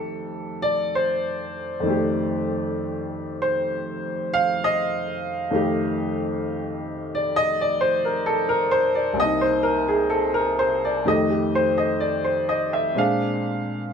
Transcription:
Already playing: F2 D#3 A3 G4 A4
0.62 D5
0.95 C5
1.80 F2 D#3
1.86 A3 G4
3.42 C5
4.34 F5
4.64 D#5
5.51 F2 D#3 A3
5.55 G4
7.15 D5
7.36 D#5
7.61 D5
7.81 C5
8.05 A#4
8.26 A4
8.49 A#4
8.71 C5
8.95 D5
9.13 C2 C3
9.20 A#3 D#5
9.25 D#4
9.41 C5
9.63 A#4
9.88 G#4
10.10 A4
10.34 A#4
10.59 C5
10.85 D5
11.05 F2 D#3 A3 G4 D#5
11.30 G4
11.55 C5
11.78 D#5
12.00 D5
12.24 C5
12.49 D#5
12.73 E5
12.95 A#2 G#3 C4 D4 F5

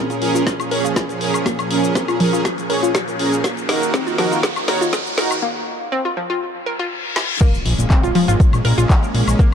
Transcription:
Already playing: A#2 F3 C#4 G#4 A#4, riser
0.10 F4, closed hi-hat, shaker
0.22 F3 C#4 G#4 A#4, open hi-hat
0.35 F4, closed hi-hat, shaker
0.47 kick, snare, closed hi-hat, shaker
0.60 closed hi-hat, high woodblock, shaker
0.71 C#4 G#4 A#4 C#5, open hi-hat
0.84 F4, closed hi-hat, shaker
0.96 kick, snare, closed hi-hat, shaker
1.09 closed hi-hat, shaker
1.21 C#4 G#4 A#4, open hi-hat
1.34 closed hi-hat, high woodblock, shaker
1.46 A#3, kick, snare, closed hi-hat, shaker
1.59 closed hi-hat, high woodblock, shaker
1.71 C#4 G#4 A#4, open hi-hat
1.84 shaker
1.95 C4, kick, snare, closed hi-hat, shaker
2.08 F4, closed hi-hat, high woodblock, shaker
2.20 F3 C#4 G#4 A#4, open hi-hat
2.33 F4, closed hi-hat, shaker
2.45 kick, snare, closed hi-hat, shaker
2.58 closed hi-hat, shaker
2.70 C#4 G#4 A#4 C#5, open hi-hat
2.83 F4, closed hi-hat, shaker
2.95 kick, snare, closed hi-hat, shaker
3.08 closed hi-hat, shaker
3.19 C#4 G#4 A#4, open hi-hat
3.32 closed hi-hat, shaker
3.44 D#2 D#3 A#3 F#4, kick, snare, closed hi-hat, shaker
3.57 closed hi-hat, shaker
3.69 D#4 F#4 A#4, snare, open hi-hat
3.82 closed hi-hat, shaker
3.94 C4, kick, snare, closed hi-hat, shaker
4.07 F4, closed hi-hat, shaker
4.18 F3 D#4 F#4 A#4, snare, open hi-hat
4.31 F4, closed hi-hat, shaker
4.43 kick, snare, closed hi-hat, shaker
4.56 closed hi-hat, high woodblock, shaker
4.68 D#4 F#4 A#4 C#5, snare, open hi-hat
4.81 F4, closed hi-hat, shaker
4.93 kick, snare, closed hi-hat, shaker
5.06 closed hi-hat, shaker
5.18 D#4 F#4 A#4, snare, open hi-hat
5.31 closed hi-hat, high woodblock, shaker
5.42 A#3
5.92 C4
6.05 F4
6.17 F3
6.30 F4
6.42 reverse cymbal
6.66 A#4
6.79 F4
7.16 snare
7.41 G#3 A#3 C#4 A#4, kick, closed hi-hat, crash, impact, shaker
7.54 closed hi-hat, shaker
7.66 A#1, open hi-hat
7.79 A#1, closed hi-hat, shaker
7.90 C4 C5, kick, clap, closed hi-hat, shaker
8.03 A#1 F4 F5, closed hi-hat, shaker
8.15 F3 F4, open hi-hat
8.28 G#1 F4 F5, closed hi-hat, shaker
8.40 kick, closed hi-hat, shaker
8.53 A#1, closed hi-hat, high woodblock, shaker
8.65 A#1 A#4 A#5, open hi-hat
8.78 A#1 F4 F5, closed hi-hat, shaker
8.90 kick, clap, closed hi-hat, shaker
9.03 closed hi-hat, shaker
9.14 A#1, open hi-hat
9.27 A#1, closed hi-hat, high woodblock, shaker
9.39 A#3 A#4, kick, closed hi-hat, shaker

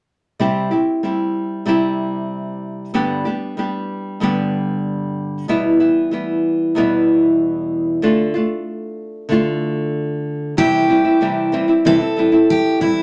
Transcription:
0.40 C3 G3 C4 E4 G4
0.71 C4 E4 G4
1.03 G3 C4 E4 G4
1.65 C3 G3 C4 E4 G4
2.94 G2 D3 G3 B3 D4 G4
3.25 G3 B3 D4 G4
3.57 G3 B3 D4 G4
4.20 G2 D3 G3 B3 D4 G4
5.48 E2 B2 E3 G3 B3 E4
5.80 E3 G3 B3 E4
6.11 E3 G3 B3 E4
6.75 E2 B2 E3 G3 B3 E4
8.02 D3 A3 D4 F4
8.34 A3 D4 F4
9.29 D3 A3 D4 F4
10.57 C3 E3 G3 C4 E4 G4
10.88 E3 G3 C4 E4
11.04 G3 C4 E4
11.21 C3 E3 G3 C4 E4
11.52 E3 G3 C4 E4
11.68 G3 C4 E4
11.85 C3 E3 G3 C4 E4 A4
12.00 G3 C4 E4
12.17 E3 G3 C4 E4
12.32 G3 C4 E4
12.50 G4
12.80 E3 G3 C4 E4

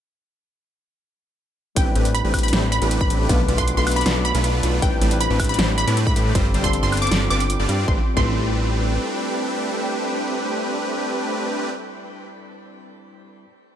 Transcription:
1.75 A1 G3 A3 C4 D4 E4 G4 B4 G5 D6, kick, closed hi-hat
1.96 A1 A3 C4 D4 G4 B4, closed hi-hat
2.03 G3 C4 D4 E4, closed hi-hat
2.07 B4
2.15 B5, closed hi-hat
2.24 A1 A3 C4 D4 G4 B4
2.34 kick, open hi-hat, high woodblock
2.39 closed hi-hat
2.43 B5, closed hi-hat
2.48 closed hi-hat
2.53 A1 A3 C4 D4 G4 C5, snare, closed hi-hat
2.72 B5, closed hi-hat
2.82 A1 A3 C4 D4 G4 B4, closed hi-hat
2.91 closed hi-hat
3.01 B5, kick
3.10 A1 A3 C4 D4 G4 B4, closed hi-hat
3.28 B1 A3 B3 D4 F4 B4, kick, closed hi-hat
3.48 B1 A3 B3 D4 F4 B4, closed hi-hat
3.56 A3 B3 D4 F4 C6, kick, closed hi-hat
3.60 B4
3.68 closed hi-hat
3.77 B1 A3 B3 D4 F4 B4 C6
3.87 open hi-hat, high woodblock
3.92 closed hi-hat
3.96 B5, closed hi-hat
4.01 closed hi-hat
4.06 B1 A3 B3 D4 F4 D5, snare, closed hi-hat
4.25 B5, closed hi-hat
4.35 B1 A3 B3 D4 F4 B4, closed hi-hat
4.44 closed hi-hat
4.63 B1 A3 B3 D4 F4 B4, closed hi-hat
4.81 A1 G3 A3 C4 D4 E4 G4 B4 G5 D6, kick, closed hi-hat
5.01 A1 A3 C4 D4 G4 B4, closed hi-hat
5.09 G3 C4 D4 E4 B4, closed hi-hat
5.21 B5, closed hi-hat
5.30 A1 A3 C4 D4 G4 B4
5.40 kick, open hi-hat, high woodblock
5.44 closed hi-hat
5.49 B5, closed hi-hat
5.54 closed hi-hat
5.59 A1 A3 C4 D4 G4 C5, snare, closed hi-hat
5.78 B5, closed hi-hat
5.88 A2 A3 C4 D4 G4 B4, closed hi-hat
5.97 closed hi-hat
6.07 B5, kick
6.16 A2 A3 C4 D4 G4 B4, closed hi-hat
6.34 G1 G3 C4 D4 F4 A4 C5, kick, closed hi-hat
6.54 G1 G3 C4 D4 F4 C5, closed hi-hat
6.62 G3 C4 D4 F4 C6, kick, closed hi-hat
6.66 A4
6.73 closed hi-hat
6.83 G1 G3 C4 D4 F4 C5 C6
6.92 open hi-hat, high woodblock
6.97 closed hi-hat
7.02 D6, closed hi-hat
7.07 closed hi-hat
7.11 G1 G3 C4 D4 F4 D5, snare, closed hi-hat
7.30 G1 G3 C4 D4 F4 B4 D6, closed hi-hat
7.40 closed hi-hat
7.50 closed hi-hat
7.59 G1 G3 C4 D4 F4 D5
7.69 G2 G3 C4 D4 F4 D5, closed hi-hat
7.85 A1 G3 A3 C4 D4 G4 A4 B4 D5 G5 C6, kick
7.90 E4 B4
8.14 A1 G3 A3 C4 D4 G4 B4 C6, kick
8.18 E4 A4

